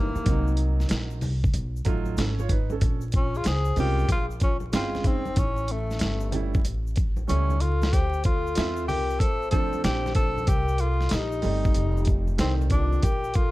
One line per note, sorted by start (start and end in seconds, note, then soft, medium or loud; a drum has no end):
0.00 0.12 G1 medium
0.00 0.22 E3 medium
0.00 0.22 G3 medium
0.00 0.23 A3 medium
0.00 0.60 A#3 medium
0.00 0.59 D#4 medium
0.00 0.23 E4 medium
0.15 muted upright bass stroke soft
0.15 high conga medium
0.15 shaker soft
0.25 0.87 C2 medium
0.25 1.17 F#3 medium
0.25 1.18 A#3 medium
0.25 1.18 C4 medium
0.25 1.19 D#4 medium
0.25 kick loud
0.25 closed hi-hat medium
0.25 shaker medium
0.47 shaker soft
0.57 closed hi-hat medium
0.57 shaker soft
0.80 snare soft
0.80 shaker soft
0.89 1.22 A#1 medium
0.89 snare loud
0.89 closed hi-hat loud
0.89 shaker medium
1.10 shaker medium
1.21 1.52 C2 medium
1.21 open hi-hat soft
1.21 high conga soft
1.21 low conga medium
1.21 shaker soft
1.44 kick loud
1.44 shaker soft
1.54 1.84 B1 medium
1.54 closed hi-hat medium
1.54 high conga soft
1.54 shaker medium
1.76 shaker soft
1.85 2.16 A1 medium
1.85 2.26 F#3 medium
1.85 2.26 A3 medium
1.85 2.18 D#4 medium
1.85 2.19 F4 medium
1.85 kick medium
1.85 closed hi-hat medium
1.85 shaker soft
2.05 high conga medium
2.05 shaker soft
2.17 2.79 G#1 medium
2.17 2.39 C#4 medium
2.17 2.38 A4 medium
2.17 snare loud
2.17 closed hi-hat medium
2.17 shaker medium
2.39 2.50 F4 medium
2.39 2.50 C#5 medium
2.39 high conga medium
2.39 shaker soft
2.49 2.71 D#4 medium
2.49 2.70 B4 medium
2.49 kick medium
2.49 closed hi-hat medium
2.49 low conga medium
2.49 shaker soft
2.70 3.02 C#4 medium
2.70 3.02 A4 medium
2.70 high conga medium
2.70 shaker soft
2.81 3.42 A#1 loud
2.81 kick loud
2.81 closed hi-hat medium
2.81 shaker medium
3.01 shaker medium
3.12 3.33 F4 medium
3.12 kick loud
3.12 closed hi-hat medium
3.12 shaker soft
3.16 3.38 C#4 medium
3.35 3.49 F4 loud
3.35 3.46 G#4 medium
3.35 shaker soft
3.44 3.76 C#2 medium
3.44 3.79 G#4 loud
3.44 3.77 C5 medium
3.44 snare loud
3.44 closed hi-hat medium
3.44 shaker medium
3.65 shaker medium
3.76 4.07 C2 medium
3.76 4.02 G#3 medium
3.76 4.03 C4 medium
3.76 4.03 C#4 medium
3.76 4.04 F4 medium
3.76 4.08 G4 loud
3.76 4.07 A#4 medium
3.76 open hi-hat soft
3.76 high conga soft
3.76 low conga medium
3.76 shaker soft
3.99 shaker soft
4.08 4.70 A#1 medium
4.08 4.26 F4 loud
4.08 4.23 G#4 medium
4.08 kick medium
4.08 closed hi-hat medium
4.08 high conga soft
4.08 shaker medium
4.31 shaker soft
4.40 4.57 C#4 medium
4.40 4.55 F4 medium
4.40 kick medium
4.40 closed hi-hat medium
4.40 shaker soft
4.60 high conga medium
4.60 shaker soft
4.72 5.34 G1 medium
4.72 5.21 G#3 medium
4.72 5.22 C4 medium
4.72 5.22 C#4 medium
4.72 5.08 F4 medium
4.72 5.03 G#4 medium
4.72 5.23 G5 medium
4.72 snare loud
4.72 closed hi-hat medium
4.72 shaker medium
4.95 snare soft
4.95 high conga medium
4.95 shaker soft
5.04 5.40 C4 medium
5.04 5.37 D#4 medium
5.04 kick medium
5.04 closed hi-hat medium
5.04 low conga medium
5.04 shaker soft
5.25 high conga medium
5.25 shaker soft
5.36 5.98 A1 medium
5.36 5.73 C#4 medium
5.36 5.68 E4 medium
5.36 kick loud
5.36 closed hi-hat medium
5.36 shaker medium
5.57 shaker medium
5.67 6.34 A3 medium
5.67 6.32 C#4 medium
5.67 closed hi-hat medium
5.67 shaker soft
5.90 snare soft
5.90 shaker soft
5.99 6.65 G1 medium
5.99 snare loud
5.99 closed hi-hat loud
5.99 shaker medium
6.20 shaker medium
6.32 6.58 G3 medium
6.32 6.58 A3 medium
6.32 6.59 C#4 medium
6.32 6.59 E4 medium
6.32 closed hi-hat medium
6.32 high conga soft
6.32 low conga medium
6.32 shaker soft
6.54 kick loud
6.54 shaker soft
6.65 7.26 A1 medium
6.65 closed hi-hat medium
6.65 high conga soft
6.65 shaker medium
6.87 shaker soft
6.96 kick medium
6.96 closed hi-hat medium
6.96 shaker soft
7.17 high conga medium
7.17 shaker soft
7.27 7.90 C#2 medium
7.27 7.53 G3 medium
7.27 7.54 A3 medium
7.27 7.62 C#4 medium
7.27 7.54 C#4 medium
7.27 7.58 E4 medium
7.27 7.55 E4 medium
7.27 closed hi-hat medium
7.27 shaker medium
7.50 high conga medium
7.50 shaker soft
7.60 7.94 F4 loud
7.60 7.92 A4 medium
7.60 closed hi-hat medium
7.60 low conga medium
7.60 shaker soft
7.82 snare medium
7.82 high conga medium
7.82 shaker soft
7.93 8.53 D2 medium
7.93 8.25 G4 loud
7.93 8.24 C5 medium
7.93 kick loud
7.93 closed hi-hat medium
7.93 shaker medium
8.13 shaker medium
8.24 8.85 F4 medium
8.24 8.84 A4 medium
8.24 kick loud
8.24 closed hi-hat medium
8.24 shaker soft
8.47 shaker soft
8.55 8.89 E2 medium
8.55 9.48 C4 medium
8.55 9.47 F4 medium
8.55 9.49 E5 medium
8.55 snare loud
8.55 closed hi-hat loud
8.55 shaker medium
8.77 shaker medium
8.88 9.21 C2 medium
8.88 9.21 G4 loud
8.88 9.18 A#4 medium
8.88 open hi-hat medium
8.88 high conga soft
8.88 low conga medium
8.88 shaker soft
9.10 shaker soft
9.20 9.81 A1 medium
9.20 9.50 A4 loud
9.20 9.51 C5 medium
9.20 kick loud
9.20 closed hi-hat medium
9.20 high conga soft
9.20 shaker medium
9.42 shaker soft
9.51 10.43 F3 medium
9.51 10.43 A3 medium
9.51 10.44 C4 medium
9.51 10.44 D4 medium
9.51 9.81 A4 loud
9.51 9.82 C5 medium
9.51 kick medium
9.51 closed hi-hat medium
9.51 shaker soft
9.73 high conga medium
9.73 shaker soft
9.84 10.48 A#1 medium
9.84 10.14 G4 loud
9.84 10.14 C5 medium
9.84 snare loud
9.84 closed hi-hat loud
9.84 shaker medium
10.06 snare soft
10.06 high conga medium
10.06 shaker soft
10.15 10.50 A4 loud
10.15 10.46 C5 medium
10.15 kick medium
10.15 closed hi-hat medium
10.15 low conga soft
10.15 shaker soft
10.38 high conga medium
10.38 shaker soft
10.47 11.08 C2 loud
10.47 10.82 G4 loud
10.47 10.79 A#4 medium
10.47 kick loud
10.47 closed hi-hat medium
10.47 shaker medium
10.68 shaker medium
10.78 11.14 F4 medium
10.78 11.12 A4 medium
10.78 closed hi-hat medium
10.78 shaker soft
11.01 snare soft
11.01 shaker soft
11.09 11.42 A#1 medium
11.09 12.14 D#4 medium
11.09 12.14 G4 medium
11.09 snare loud
11.09 closed hi-hat loud
11.09 shaker medium
11.32 shaker medium
11.42 11.74 G1 medium
11.42 12.34 G3 medium
11.42 12.35 A3 medium
11.42 12.35 C4 medium
11.42 12.36 D#4 medium
11.42 open hi-hat soft
11.42 high conga soft
11.42 low conga medium
11.42 shaker soft
11.65 kick medium
11.65 shaker soft
11.74 12.36 F1 medium
11.74 closed hi-hat medium
11.74 high conga soft
11.74 shaker medium
11.97 shaker soft
12.05 kick medium
12.05 closed hi-hat medium
12.05 shaker soft
12.27 high conga medium
12.27 shaker soft
12.38 13.00 C2 medium
12.38 13.04 D#3 medium
12.38 13.02 G3 medium
12.38 13.03 A3 medium
12.38 12.54 C4 medium
12.38 13.04 C4 medium
12.38 12.54 D#4 medium
12.38 snare loud
12.38 closed hi-hat loud
12.38 shaker medium
12.61 high conga medium
12.61 shaker soft
12.70 13.05 D4 medium
12.70 13.01 F4 medium
12.70 kick medium
12.70 closed hi-hat medium
12.70 low conga medium
12.70 shaker soft
12.93 high conga medium
12.93 shaker soft
13.02 13.51 A#1 medium
13.02 13.37 G4 loud
13.02 13.35 A#4 medium
13.02 kick loud
13.02 closed hi-hat medium
13.02 shaker medium
13.24 shaker medium
13.34 13.51 F4 loud
13.34 13.51 A4 medium
13.34 kick loud
13.34 closed hi-hat medium
13.34 shaker soft